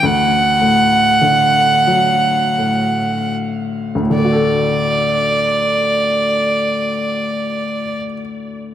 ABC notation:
X:1
M:3/4
L:1/8
Q:1/4=39
K:D
V:1 name="Fiddle"
f4- f z | d6 |]
V:2 name="Upright piano" clef=bass
D,, A,, D, F, A,,2 | [D,,A,,D,A,FA]6 |]